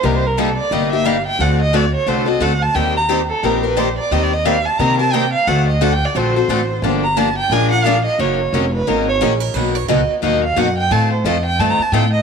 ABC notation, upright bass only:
X:1
M:4/4
L:1/8
Q:"Swing" 1/4=176
K:Dphr
V:1 name="Upright bass" clef=bass
C,,4 G,,,4 | D,,4 C,,2 D,,2 | E,,4 B,,,4 | E,,4 C,4 |
D,,4 B,,,2 A,,,2 | G,,,4 B,,,4 | [K:Ebm] G,,,2 F,,,2 A,,,2 B,,,2 | =B,,,2 D,, z ^D,,2 ^F,,2 |
=A,,2 F,,2 =G,, z A,,2 |]